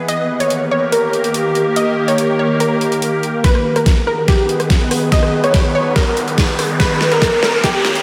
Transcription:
0.08 3.41 D#3 medium
0.08 3.41 A#3 medium
0.08 3.41 G4 medium
0.08 3.41 A#4 medium
0.08 0.29 D#5 loud
0.08 closed hi-hat medium
0.40 0.61 C#5 medium
0.40 closed hi-hat medium
0.50 closed hi-hat medium
0.71 0.85 C#5 medium
0.92 1.06 A#4 medium
0.92 closed hi-hat medium
1.13 closed hi-hat medium
1.24 closed hi-hat medium
1.34 closed hi-hat medium
1.55 closed hi-hat medium
1.76 1.97 D#5 loud
1.76 closed hi-hat medium
2.08 2.28 C#5 medium
2.08 closed hi-hat medium
2.18 closed hi-hat medium
2.39 2.53 C#5 medium
2.60 2.74 A#4 medium
2.60 closed hi-hat medium
2.81 closed hi-hat medium
2.92 closed hi-hat medium
3.02 closed hi-hat medium
3.23 closed hi-hat medium
3.44 8.02 D#3 medium
3.44 8.02 B3 medium
3.44 8.02 G#4 medium
3.44 3.64 B4 loud
3.44 6.76 B4 medium
3.44 kick loud
3.44 snare soft
3.44 closed hi-hat medium
3.44 riser medium
3.55 cross-stick medium
3.76 3.96 A#4 medium
3.76 cross-stick soft
3.76 closed hi-hat medium
3.86 kick loud
3.86 snare medium
3.86 closed hi-hat medium
4.07 4.21 A#4 medium
4.28 4.42 G4 medium
4.28 kick loud
4.28 snare soft
4.28 closed hi-hat medium
4.49 closed hi-hat medium
4.60 cross-stick soft
4.60 closed hi-hat medium
4.70 kick loud
4.70 snare medium
4.70 closed hi-hat medium
4.91 cross-stick soft
4.91 open hi-hat medium
5.12 5.32 D#5 loud
5.12 kick medium
5.12 snare medium
5.12 closed hi-hat medium
5.23 cross-stick medium
5.44 5.64 C#5 medium
5.44 cross-stick medium
5.44 closed hi-hat medium
5.54 kick loud
5.54 snare medium
5.54 closed hi-hat medium
5.75 5.89 C#5 medium
5.96 6.10 A#4 medium
5.96 kick loud
5.96 snare medium
5.96 closed hi-hat medium
6.17 closed hi-hat medium
6.28 closed hi-hat medium
6.38 kick medium
6.38 snare medium
6.38 closed hi-hat medium
6.59 cross-stick medium
6.59 open hi-hat medium
6.80 7.00 B4 loud
6.80 8.02 C#5 medium
6.80 kick loud
6.80 snare medium
6.80 closed hi-hat medium
7.01 snare medium
7.12 7.32 A#4 medium
7.12 closed hi-hat medium
7.22 kick loud
7.22 snare medium
7.22 closed hi-hat medium
7.43 7.56 A#4 medium
7.43 snare medium
7.64 7.77 G4 medium
7.64 kick loud
7.64 snare medium
7.64 closed hi-hat medium
7.85 snare medium
7.85 closed hi-hat medium
7.95 closed hi-hat medium

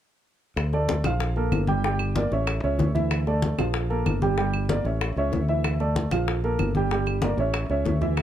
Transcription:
0.56 1.01 D2 medium
0.56 high bongo medium
0.56 high conga soft
0.56 claves soft
0.73 0.99 A3 medium
0.73 0.99 A4 medium
0.73 1.00 D5 medium
0.73 high bongo soft
0.73 high conga soft
0.89 high bongo soft
0.89 high conga medium
1.04 1.49 A#1 medium
1.04 1.31 F3 medium
1.04 1.32 F4 medium
1.04 1.32 F5 medium
1.04 high bongo soft
1.04 high conga medium
1.04 claves medium
1.20 high bongo medium
1.20 high conga soft
1.36 1.63 A#3 medium
1.36 1.63 A4 medium
1.36 1.63 A#4 medium
1.36 high conga soft
1.52 2.26 G1 medium
1.52 high bongo soft
1.52 low bongo medium
1.52 high conga medium
1.52 claves medium
1.67 1.81 G3 medium
1.67 1.81 G4 medium
1.67 1.81 G5 medium
1.67 high bongo soft
1.67 high conga medium
1.84 2.10 G3 medium
1.84 2.11 G4 medium
1.84 2.11 G5 medium
1.84 high bongo medium
1.84 high conga soft
1.99 high bongo soft
1.99 high conga soft
1.99 claves medium
2.16 2.29 A#3 medium
2.16 2.29 A#4 medium
2.16 2.29 D5 medium
2.16 high bongo soft
2.16 high conga medium
2.31 2.61 A1 medium
2.31 2.58 C#4 medium
2.31 2.58 C#5 medium
2.31 2.58 E5 medium
2.31 high bongo soft
2.31 high conga soft
2.47 high bongo medium
2.47 high conga soft
2.47 claves medium
2.63 2.78 C#2 medium
2.63 2.89 C#4 medium
2.63 2.90 C#5 medium
2.63 2.90 E5 medium
2.63 high conga soft
2.79 3.52 D2 medium
2.79 high bongo soft
2.79 low bongo medium
2.79 high conga medium
2.95 3.21 E3 medium
2.95 3.21 E4 medium
2.95 3.21 E5 medium
2.95 high bongo soft
2.95 high conga medium
3.11 high bongo medium
3.11 high conga soft
3.11 claves medium
3.27 3.53 A3 medium
3.27 3.53 A4 medium
3.27 3.53 D5 medium
3.27 high bongo soft
3.27 high conga soft
3.42 high bongo medium
3.42 high conga medium
3.58 4.03 A#1 medium
3.58 3.84 F3 medium
3.58 3.85 F4 medium
3.58 3.85 F5 medium
3.58 high bongo soft
3.58 high conga medium
3.58 claves medium
3.74 high bongo medium
3.74 high conga soft
3.90 4.16 A#3 medium
3.90 4.16 A4 medium
3.90 4.16 A#4 medium
3.90 high conga soft
4.06 4.80 G1 medium
4.06 high bongo soft
4.06 low bongo medium
4.06 high conga medium
4.06 claves medium
4.22 4.35 G3 medium
4.22 4.35 G4 medium
4.22 4.35 G5 medium
4.22 high bongo soft
4.22 high conga medium
4.38 4.64 G3 medium
4.38 4.64 G4 medium
4.38 4.64 G5 medium
4.38 high bongo medium
4.38 high conga soft
4.53 high bongo soft
4.53 high conga soft
4.53 claves medium
4.69 4.82 A#3 medium
4.69 4.83 A#4 medium
4.69 4.83 D5 medium
4.69 high bongo medium
4.69 high conga medium
4.84 5.14 A1 medium
4.84 5.12 C#4 medium
4.84 5.12 C#5 medium
4.84 5.12 E5 medium
4.84 high bongo soft
4.84 high conga soft
5.01 high bongo medium
5.01 high conga soft
5.01 claves medium
5.16 5.31 C#2 medium
5.16 5.43 C#4 medium
5.16 5.43 C#5 medium
5.16 5.44 E5 medium
5.16 high conga soft
5.32 6.06 D2 medium
5.32 high bongo soft
5.32 low bongo medium
5.32 high conga medium
5.49 5.75 E3 medium
5.49 5.75 E4 medium
5.49 5.75 E5 medium
5.49 high bongo soft
5.64 high bongo medium
5.64 high conga soft
5.64 claves medium
5.80 6.06 A3 medium
5.80 6.06 A4 medium
5.80 6.06 D5 medium
5.80 high bongo soft
5.80 high conga soft
5.96 high bongo medium
5.96 high conga medium
6.11 6.56 A#1 medium
6.11 6.38 F3 medium
6.11 6.38 F4 medium
6.11 6.38 F5 medium
6.11 high bongo soft
6.11 high conga medium
6.11 claves medium
6.28 high bongo medium
6.28 high conga soft
6.44 6.70 A#3 medium
6.44 6.70 A4 medium
6.44 6.70 A#4 medium
6.44 high conga soft
6.59 7.33 G1 medium
6.59 high bongo soft
6.59 low bongo medium
6.59 high conga medium
6.59 claves medium
6.75 6.89 G3 medium
6.75 6.89 G4 medium
6.75 6.89 G5 medium
6.75 high bongo soft
6.75 high conga medium
6.91 7.17 G3 medium
6.91 7.18 G4 medium
6.91 7.18 G5 medium
6.91 high bongo medium
6.91 high conga soft
7.06 high bongo soft
7.06 high conga soft
7.06 claves medium
7.22 7.36 A#3 medium
7.22 7.36 A#4 medium
7.22 7.36 D5 medium
7.22 high bongo medium
7.22 high conga medium
7.37 7.67 A1 medium
7.37 7.65 C#4 medium
7.37 7.65 C#5 medium
7.37 7.65 E5 medium
7.37 high bongo soft
7.37 high conga soft
7.54 high bongo medium
7.54 high conga soft
7.54 claves medium
7.70 7.84 C#2 medium
7.70 7.96 C#4 medium
7.70 7.96 C#5 medium
7.70 7.96 E5 medium
7.70 high conga soft
7.85 8.22 D2 medium
7.85 high bongo soft
7.85 low bongo medium
7.85 high conga medium
8.01 8.22 E3 medium
8.01 8.22 E4 medium
8.01 8.22 E5 medium
8.01 high bongo soft
8.01 high conga medium
8.17 high bongo medium
8.17 high conga soft
8.17 claves medium

